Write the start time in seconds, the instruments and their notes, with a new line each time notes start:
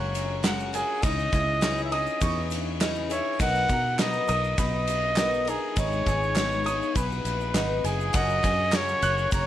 Already playing: fingered electric bass F#1, twelve-string acoustic guitar G#3 A#3 C#4 F#4, trumpet C#5, upright piano G#5 A#5 F#6
0.15 ride, shaker
0.43 twelve-string acoustic guitar F#2 C#3 G#3 A#3 C#4 F#4, upright piano F#5, snare, clap, ride, shaker
0.60 shaker
0.73 twelve-string acoustic guitar G#3 A#3 C#4 F#4, trumpet G#4, upright piano G#5, ride, shaker
1.02 fingered electric bass C#2, twelve-string acoustic guitar C#3 E3 C#4 D#4 G#4, trumpet D#5, upright piano D#5, kick, ride, shaker
1.19 shaker
1.32 fingered electric bass C#2, twelve-string acoustic guitar C#4 D#4 G#4, upright piano E4, kick, ride, shaker
1.61 twelve-string acoustic guitar C#3 E3 C#4 D#4 G#4, snare, clap, ride, shaker
1.78 shaker
1.84 trumpet E5
1.92 twelve-string acoustic guitar C#4 D#4 G#4, trumpet D#5, upright piano D#6, ride
2.07 shaker
2.20 fingered electric bass E2, twelve-string acoustic guitar E3 C#4 D#4 G#4, upright piano C#6, kick, ride, shaker
2.50 ride, shaker
2.80 twelve-string acoustic guitar C#3 E3 C#4 D#4 G#4, upright piano D#5, snare, clap, ride, shaker
2.95 shaker
3.09 twelve-string acoustic guitar C#4 D#4 G#4, trumpet C#5, upright piano E5, ride, shaker
3.39 fingered electric bass B1, twelve-string acoustic guitar B2 F#3 B3 D#4 A#4, upright piano D#5, trumpet F#5, kick, ride, shaker
3.55 shaker
3.69 fingered electric bass B2, twelve-string acoustic guitar B3 D#4 A#4, upright piano A#5, kick, ride, shaker
3.99 twelve-string acoustic guitar B2 F#3 B3 D#4 A#4, trumpet D#5, snare, clap, ride, shaker
4.13 shaker
4.28 fingered electric bass B1, twelve-string acoustic guitar D#4 A#4, upright piano D#6, ride, shaker
4.32 twelve-string acoustic guitar B3
4.44 shaker
4.58 fingered electric bass B1, twelve-string acoustic guitar F#3 B3 D#4, trumpet D#5, upright piano B5, kick, ride, shaker
4.87 ride, shaker
5.16 twelve-string acoustic guitar B2 F#3 B3 D#4 A#4, upright piano D#5, snare, clap, ride, shaker
5.34 shaker
5.45 twelve-string acoustic guitar B3 D#4 A#4, upright piano A#5, ride, shaker
5.49 trumpet G#4
5.76 fingered electric bass G#1, twelve-string acoustic guitar G#2 D#3 G#3 B3 D#4 G#4, trumpet C#5, upright piano D#5, kick, ride, shaker
5.92 shaker
6.06 fingered electric bass G#1, twelve-string acoustic guitar G#3 B3 D#4 G#4, upright piano G#5, kick, ride, shaker
6.23 shaker
6.36 twelve-string acoustic guitar G#2 D#3 G#3 B3 D#4 G#4, snare, clap, ride, shaker
6.52 shaker
6.64 twelve-string acoustic guitar G#3 B3 D#4 G#4, upright piano D#6, ride, shaker
6.82 shaker
6.95 fingered electric bass B1, twelve-string acoustic guitar F#3 B3 D#4 G#4, trumpet B4, upright piano B5, kick, ride, shaker
7.12 shaker
7.25 fingered electric bass A#1, ride, shaker
7.41 shaker
7.54 fingered electric bass G#1, twelve-string acoustic guitar B2 F#3 B3 D#4 G#4, upright piano D#5, snare, clap, ride, shaker
7.84 fingered electric bass F#1, twelve-string acoustic guitar B3 D#4 G#4, trumpet G#4, upright piano G#5, ride, shaker
8.00 shaker
8.13 fingered electric bass F#1, twelve-string acoustic guitar F#2 C#3 F#3 A#3 C#4 G#4, trumpet D#5, upright piano F#5, kick, ride, shaker
8.29 shaker
8.43 fingered electric bass F#2, twelve-string acoustic guitar F#3 A#3 C#4 G#4, upright piano G#5, kick, ride, shaker
8.71 twelve-string acoustic guitar F#2 C#3 F#3 A#3 C#4 G#4, snare, clap, ride, shaker
8.76 trumpet C#5
8.88 shaker
9.02 fingered electric bass F#1, twelve-string acoustic guitar F#3 A#3 C#4 G#4, upright piano F#6, ride, shaker
9.18 shaker
9.32 fingered electric bass F#1, twelve-string acoustic guitar F#3 A#3 C#4 G#4, trumpet C#5, upright piano A#5, kick, ride, shaker